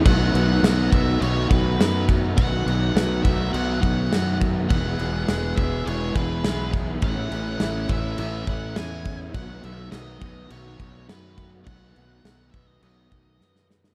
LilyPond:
<<
  \new Staff \with { instrumentName = "Lead electric guitar" } { \time 4/4 \key b \mixolydian \tempo 4 = 103 fis''4. e''8 cis''8 b'4 r8 | fis''4. e''8 fis''8 fis''4 r8 | fis''4. e''8 cis''8 b'4 r8 | fis''4. e''8 e''8 fis''8 gis''8. r16 |
fis''8 e''8 dis''4 cis''4 b'8. r16 | fis''4. e''16 dis''16 dis''4. r8 | }
  \new Staff \with { instrumentName = "Clean electric guitar" } { \time 4/4 \key b \mixolydian <b, dis a b fis'>8 <a b fis'>8 <dis a b fis'>8 <a b fis'>8 <b, dis a b fis'>8 <a b fis'>8 <dis a b fis'>8 <a b fis'>8 | <b, dis a b fis'>8 <a b fis'>8 <dis a b fis'>8 <a b fis'>8 <b, dis a b fis'>8 <a b fis'>8 <dis a b fis'>8 <a b fis'>8 | <e, b, gis b gis'>8 <gis b gis'>8 <gis b gis'>8 <gis b gis'>8 <e, b, gis b gis'>8 <gis b gis'>8 <gis b gis'>8 <dis gis b gis'>8 | <a, e cis' e'>8 <cis' e'>8 <e cis' e'>8 <cis' e'>8 <a, e cis' e'>8 <cis' e'>8 <e cis' e'>8 <gis cis' e'>8 |
<b, dis a b fis'>8 <a b fis'>8 <dis a b fis'>8 <a b fis'>8 <b, dis a b fis'>8 <a b fis'>8 <dis a b fis'>8 <a b fis'>8 | <b, dis a b fis'>8 <a b fis'>8 <dis a b fis'>8 <a b fis'>8 <b, dis a b fis'>8 <a b fis'>8 <dis a b fis'>8 <a b fis'>8 | }
  \new Staff \with { instrumentName = "Overdriven electric guitar" } { \time 4/4 \key b \mixolydian <b, dis a b fis'>4 <dis a b fis'>4 <b, dis a b fis'>8 <a b fis'>8 <dis a b fis'>4 | <b, dis a b fis'>4 <dis a b fis'>4 <b, dis a b fis'>8 <a b fis'>8 <dis a b fis'>4 | <e, b, e gis b e'>4 <e gis b e'>4 <e, b, e gis b e'>8 <e gis b e'>8 <e gis b e'>4 | <a, e a cis' e'>4 <e a cis' e'>4 <a, e a cis' e'>8 <a cis' e'>8 <e a cis' e'>4 |
<b, dis a b fis'>4 <dis a b fis'>4 <b, dis a b fis'>8 <a b fis'>8 <dis a b fis'>4 | <b, dis a b fis'>4 <dis a b fis'>4 <b, dis a b fis'>8 <a b fis'>8 <dis a b fis'>4 | }
  \new Staff \with { instrumentName = "Distorted electric guitar" } { \clef bass \time 4/4 \key b \mixolydian <b, fis b>4. <b, fis b>2~ <b, fis b>8 | <b, fis b>4. <b, fis b>2~ <b, fis b>8 | <e, b, e>4. <e, b, e>2~ <e, b, e>8 | <a, e a>4. <a, e a>2~ <a, e a>8 |
<b, fis b>4. <b, fis b>2~ <b, fis b>8 | <b, fis b>4. <b, fis b>2~ <b, fis b>8 | }
  \new Staff \with { instrumentName = "Fingered electric bass" } { \clef bass \time 4/4 \key b \mixolydian b,,8 b,,8 b,,8 b,,8 b,,8 b,,8 fis,4 | b,,8 b,,8 b,,8 b,,8 b,,8 b,,8 fis,4 | e,,8 e,,8 e,,8 e,,8 e,,8 e,,8 b,,4 | a,,8 a,,8 a,,8 a,,8 a,,8 a,,8 e,4 |
b,,8 b,,8 b,,8 b,,8 b,,8 b,,8 fis,4 | b,,8 b,,8 b,,8 b,,8 b,,8 b,,8 fis,4 | }
  \new DrumStaff \with { instrumentName = "Drums" } \drummode { \time 4/4 <cymc bd>8 cymc8 <cymc sn>8 <cymc bd>8 cymc8 <cymc bd>8 <cymc sn>8 <cymc bd>8 | <cymc bd>8 cymc8 <cymc sn>8 <cymc bd>8 cymc8 <cymc bd>8 <cymc sn>8 <cymc bd>8 | <cymc bd>8 cymc8 <cymc sn>8 <cymc bd>8 cymc8 <cymc bd>8 <cymc sn>8 <cymc bd>8 | <cymc bd>8 cymc8 <cymc sn>8 <cymc bd>8 cymc8 <cymc bd>8 <cymc sn>8 <cymc bd>8 |
<cymc bd>8 cymc8 <cymc sn>8 <cymc bd>8 cymc8 <cymc bd>8 <cymc sn>8 <cymc bd>8 | <cymc bd>8 cymc8 <cymc sn>8 <cymc bd>8 cymc8 <cymc bd>8 sn16 sn16 sn16 sn16 | }
>>